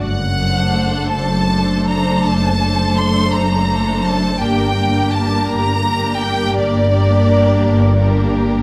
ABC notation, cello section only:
X:1
M:12/8
L:1/8
Q:3/8=56
K:Gm
V:1 name="Cello section" clef=bass
^F,,3 F,,3 F,,3 F,,3 | G,,3 G,,3 G,,3 G,,3 |]